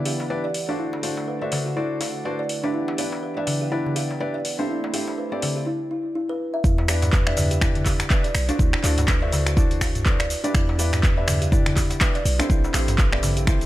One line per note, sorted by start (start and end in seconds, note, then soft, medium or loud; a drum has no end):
0.00 0.77 E3 medium
0.00 0.77 B3 medium
0.00 0.28 D4 medium
0.00 0.28 E4 medium
0.00 0.28 G4 medium
0.00 0.77 G4 medium
0.00 0.28 B4 medium
0.00 0.28 D5 loud
0.00 4.65 F#5 medium
0.05 0.18 G4 loud
0.05 open hi-hat medium
0.05 darbuka ka medium
0.20 darbuka tek medium
0.30 0.44 D4 medium
0.30 0.44 E4 medium
0.30 0.44 G4 medium
0.30 0.44 B4 medium
0.30 0.43 B4 medium
0.30 0.44 D5 loud
0.44 0.50 D5 medium
0.54 open hi-hat medium
0.69 0.78 D4 loud
0.69 1.01 D4 medium
0.69 1.01 F#4 medium
0.69 1.01 A4 medium
0.69 1.01 C5 medium
0.69 1.01 D5 medium
0.78 2.72 D3 medium
0.78 2.72 A3 medium
0.78 2.72 E4 medium
0.78 0.91 E4 medium
0.93 darbuka ka medium
1.03 1.38 D4 medium
1.03 1.38 F#4 medium
1.03 1.16 F#4 medium
1.03 1.38 A4 medium
1.03 1.38 C5 medium
1.03 1.38 D5 medium
1.03 open hi-hat medium
1.17 darbuka tek medium
1.28 1.41 B4 medium
1.42 1.74 D4 medium
1.42 1.74 F#4 medium
1.42 1.74 A4 medium
1.42 1.74 C5 medium
1.42 1.47 D5 medium
1.42 1.74 E5 medium
1.52 open hi-hat medium
1.52 darbuka ka medium
1.52 darbuka tek medium
1.52 darbuka dum medium
1.66 1.72 F#4 medium
1.76 2.23 D4 medium
1.76 1.89 E4 medium
1.76 2.23 F#4 medium
1.76 2.23 A4 medium
1.76 2.23 C5 medium
1.76 2.23 D5 loud
2.01 2.13 F#4 loud
2.01 open hi-hat medium
2.01 darbuka tek medium
2.25 2.39 D4 medium
2.25 2.39 F#4 medium
2.25 2.39 A4 medium
2.25 2.38 B4 medium
2.25 2.39 C5 medium
2.25 2.39 D5 loud
2.39 2.45 D5 medium
2.49 open hi-hat medium
2.64 2.73 D4 loud
2.64 2.96 D4 medium
2.64 2.96 E4 medium
2.64 2.96 G4 medium
2.64 2.96 B4 medium
2.64 2.96 D5 medium
2.64 darbuka tek medium
2.74 4.67 E3 medium
2.74 4.67 B3 medium
2.74 2.87 E4 medium
2.74 4.67 G4 medium
2.88 darbuka ka loud
2.98 3.34 D4 medium
2.98 3.34 E4 medium
2.98 3.11 G4 medium
2.98 3.34 G4 medium
2.98 3.34 B4 medium
2.98 3.34 D5 medium
2.98 open hi-hat medium
3.12 darbuka tek medium
3.23 3.36 B4 medium
3.37 3.69 D4 medium
3.37 3.69 E4 medium
3.37 3.69 G4 medium
3.37 3.69 B4 medium
3.37 3.42 D5 medium
3.37 3.69 E5 loud
3.47 open hi-hat medium
3.47 darbuka ka medium
3.47 darbuka tek medium
3.47 darbuka dum medium
3.61 3.67 G4 medium
3.72 4.18 D4 medium
3.72 3.84 E4 medium
3.72 4.18 E4 medium
3.72 4.18 G4 medium
3.72 4.18 B4 medium
3.72 4.18 D5 loud
3.86 darbuka dum medium
3.96 4.08 G4 loud
3.96 open hi-hat medium
3.96 darbuka ka medium
4.11 darbuka tek medium
4.20 4.34 D4 medium
4.20 4.34 E4 medium
4.20 4.34 G4 medium
4.20 4.34 B4 medium
4.20 4.34 D5 loud
4.34 4.40 D5 medium
4.45 open hi-hat medium
4.59 4.91 C4 medium
4.59 4.68 D4 loud
4.59 4.91 E4 medium
4.59 4.91 G4 medium
4.59 4.91 A4 medium
4.59 4.91 C5 medium
4.69 5.66 A3 medium
4.69 5.66 C4 medium
4.69 4.82 E4 medium
4.69 5.66 E4 medium
4.69 5.66 B5 medium
4.84 darbuka ka medium
4.93 5.29 C4 medium
4.93 5.29 E4 medium
4.93 5.06 G4 medium
4.93 5.29 G4 medium
4.93 5.29 A4 medium
4.93 5.29 C5 medium
4.93 open hi-hat medium
5.08 darbuka tek medium
5.18 5.31 B4 medium
5.32 5.64 C4 medium
5.32 5.64 E4 medium
5.32 5.64 G4 medium
5.32 5.64 A4 medium
5.32 5.38 D5 medium
5.32 5.64 D5 medium
5.42 open hi-hat medium
5.42 darbuka ka medium
5.42 darbuka tek medium
5.42 darbuka dum medium
5.56 5.62 G4 medium
5.66 5.79 E4 medium
5.91 6.04 E4 medium
6.15 6.23 E4 medium
6.29 6.39 B4 loud
6.54 6.63 E5 medium
6.64 8.04 E2 medium
6.64 6.77 E4 medium
6.64 kick loud
6.64 cabasa medium
6.78 darbuka ka loud
6.88 7.24 D4 medium
6.88 7.24 E4 medium
6.88 7.24 G4 medium
6.88 7.01 G4 loud
6.88 7.24 B4 medium
6.88 7.24 D5 medium
6.88 finger snap loud
6.88 open hi-hat loud
6.88 cabasa medium
7.02 closed hi-hat medium
7.02 mid tom medium
7.02 darbuka tek medium
7.02 cabasa soft
7.13 7.26 B4 medium
7.13 kick loud
7.13 clap loud
7.13 cabasa soft
7.27 7.59 D4 medium
7.27 7.59 E4 medium
7.27 7.59 G4 medium
7.27 7.59 B4 medium
7.27 7.33 D5 medium
7.27 7.59 E5 loud
7.27 finger snap medium
7.37 mid tom medium
7.37 open hi-hat medium
7.37 darbuka ka medium
7.37 darbuka tek medium
7.37 darbuka dum medium
7.37 cabasa medium
7.51 7.57 G4 medium
7.51 closed hi-hat medium
7.51 cabasa soft
7.61 8.08 D4 medium
7.61 7.74 E4 medium
7.61 8.08 E4 medium
7.61 8.08 G4 medium
7.61 8.08 B4 medium
7.61 8.08 D5 loud
7.61 finger snap loud
7.61 kick loud
7.61 mid tom medium
7.61 cabasa medium
7.75 closed hi-hat soft
7.75 darbuka dum medium
7.86 7.99 G4 loud
7.86 kick medium
7.86 clap soft
7.86 open hi-hat medium
7.86 darbuka ka medium
7.86 cabasa medium
8.00 finger snap medium
8.00 closed hi-hat medium
8.00 darbuka tek medium
8.00 cabasa soft
8.10 8.24 D4 loud
8.10 8.24 E4 medium
8.10 8.24 G4 medium
8.10 8.24 B4 medium
8.10 8.24 D5 loud
8.10 kick loud
8.10 clap loud
8.10 cabasa medium
8.24 8.30 D5 medium
8.24 closed hi-hat soft
8.35 8.51 B1 medium
8.35 finger snap loud
8.35 open hi-hat medium
8.35 cabasa medium
8.49 8.58 D4 loud
8.49 8.81 D4 medium
8.49 8.81 F#4 medium
8.49 8.81 A4 medium
8.49 8.81 C5 medium
8.49 8.81 D5 loud
8.49 closed hi-hat medium
8.49 cabasa soft
8.59 8.75 D2 loud
8.59 8.72 E4 medium
8.59 kick loud
8.59 cabasa medium
8.73 finger snap medium
8.73 darbuka ka loud
8.83 10.35 D2 medium
8.83 9.19 D4 medium
8.83 8.96 F#4 loud
8.83 9.19 F#4 medium
8.83 9.19 A4 medium
8.83 9.19 C5 medium
8.83 9.19 D5 medium
8.83 clap medium
8.83 open hi-hat medium
8.83 cabasa loud
8.98 closed hi-hat medium
8.98 mid tom medium
8.98 darbuka tek medium
8.98 cabasa soft
9.08 9.21 B4 medium
9.08 finger snap medium
9.08 kick loud
9.08 clap medium
9.08 cabasa medium
9.22 9.54 D4 medium
9.22 9.54 F#4 medium
9.22 9.54 A4 medium
9.22 9.54 C5 medium
9.22 9.28 D5 medium
9.22 9.54 E5 loud
9.32 open hi-hat medium
9.32 darbuka ka medium
9.32 darbuka tek medium
9.32 darbuka dum medium
9.32 cabasa loud
9.46 9.52 F#4 medium
9.46 finger snap medium
9.46 closed hi-hat medium
9.46 cabasa soft
9.56 10.03 D4 loud
9.56 9.69 E4 medium
9.56 10.03 F#4 medium
9.56 10.03 A4 medium
9.56 10.03 C5 medium
9.56 10.03 D5 loud
9.56 kick loud
9.56 cabasa medium
9.71 closed hi-hat soft
9.81 9.94 F#4 loud
9.81 finger snap loud
9.81 kick medium
9.81 open hi-hat medium
9.81 darbuka tek medium
9.81 cabasa loud
9.95 closed hi-hat medium
9.95 mid tom medium
9.95 cabasa soft
10.05 10.20 D4 medium
10.05 10.20 F#4 medium
10.05 10.20 A4 medium
10.05 10.19 B4 medium
10.05 10.20 C5 medium
10.05 10.20 D5 loud
10.05 kick loud
10.05 clap loud
10.05 cabasa medium
10.19 10.25 D5 medium
10.19 finger snap medium
10.19 closed hi-hat soft
10.30 open hi-hat medium
10.30 cabasa medium
10.44 10.53 D4 loud
10.44 10.76 D4 medium
10.44 10.76 E4 medium
10.44 10.76 G4 medium
10.44 10.76 B4 medium
10.44 10.76 D5 loud
10.44 closed hi-hat medium
10.44 cabasa soft
10.54 11.94 E2 loud
10.54 10.67 E4 medium
10.54 finger snap loud
10.54 kick loud
10.54 cabasa medium
10.69 darbuka ka loud
10.79 11.14 D4 medium
10.79 11.14 E4 medium
10.79 10.91 G4 loud
10.79 11.14 G4 medium
10.79 11.14 B4 medium
10.79 11.14 D5 medium
10.79 open hi-hat medium
10.79 cabasa loud
10.93 finger snap medium
10.93 closed hi-hat medium
10.93 mid tom medium
10.93 darbuka tek medium
10.93 cabasa soft
11.03 11.17 B4 medium
11.03 kick loud
11.03 clap loud
11.03 cabasa medium
11.17 11.50 D4 medium
11.17 11.50 E4 medium
11.17 11.50 G4 medium
11.17 11.50 B4 medium
11.17 11.23 D5 medium
11.17 11.50 E5 loud
11.28 finger snap loud
11.28 mid tom medium
11.28 open hi-hat medium
11.28 darbuka ka medium
11.28 darbuka tek medium
11.28 darbuka dum medium
11.28 cabasa loud
11.42 11.47 G4 medium
11.42 closed hi-hat medium
11.42 cabasa soft
11.52 11.98 D4 loud
11.52 11.65 E4 medium
11.52 11.98 E4 medium
11.52 11.98 G4 medium
11.52 11.98 B4 medium
11.52 11.98 D5 loud
11.52 kick loud
11.52 mid tom medium
11.52 cabasa medium
11.66 finger snap medium
11.66 closed hi-hat soft
11.66 darbuka dum medium
11.76 11.89 G4 loud
11.76 kick medium
11.76 clap soft
11.76 open hi-hat medium
11.76 darbuka ka medium
11.76 cabasa loud
11.90 closed hi-hat medium
11.90 darbuka tek medium
11.90 cabasa soft
12.01 12.15 D4 loud
12.01 12.15 E4 medium
12.01 12.15 G4 medium
12.01 12.14 B4 medium
12.01 12.15 B4 medium
12.01 12.15 D5 loud
12.01 finger snap medium
12.01 kick loud
12.01 clap loud
12.01 cabasa medium
12.15 12.20 D5 medium
12.15 closed hi-hat soft
12.25 12.41 B1 medium
12.25 open hi-hat medium
12.25 cabasa medium
12.39 12.72 C4 medium
12.39 12.49 D4 loud
12.39 12.72 E4 medium
12.39 12.72 G4 medium
12.39 12.72 A4 medium
12.39 12.72 C5 loud
12.39 finger snap medium
12.39 closed hi-hat medium
12.39 cabasa soft
12.50 12.66 A1 loud
12.50 12.62 E4 medium
12.50 kick loud
12.50 cabasa medium
12.64 darbuka ka loud
12.64 cabasa soft
12.74 13.66 A1 medium
12.74 13.09 C4 medium
12.74 13.09 E4 medium
12.74 12.87 G4 loud
12.74 13.09 G4 medium
12.74 13.09 A4 medium
12.74 13.09 C5 loud
12.74 finger snap medium
12.74 clap medium
12.74 open hi-hat medium
12.74 cabasa loud
12.88 closed hi-hat medium
12.88 mid tom loud
12.88 darbuka tek medium
12.88 cabasa soft
12.98 13.12 B4 medium
12.98 kick loud
12.98 clap loud
12.98 cabasa medium
13.12 13.45 C4 medium
13.12 13.45 E4 medium
13.12 13.45 G4 medium
13.12 13.45 A4 medium
13.12 13.45 D5 loud
13.12 13.18 D5 medium
13.12 finger snap medium
13.23 mid tom medium
13.23 open hi-hat medium
13.23 darbuka ka medium
13.23 darbuka tek medium
13.23 darbuka dum medium
13.23 cabasa loud
13.37 13.42 G4 medium
13.37 closed hi-hat medium
13.37 cabasa soft
13.47 13.66 C4 medium
13.47 13.60 E4 medium
13.47 13.66 E4 medium
13.47 13.66 G4 medium
13.47 13.66 A4 medium
13.47 13.66 C5 loud
13.47 finger snap medium
13.47 kick loud
13.47 cabasa medium
13.61 closed hi-hat soft
13.61 cabasa soft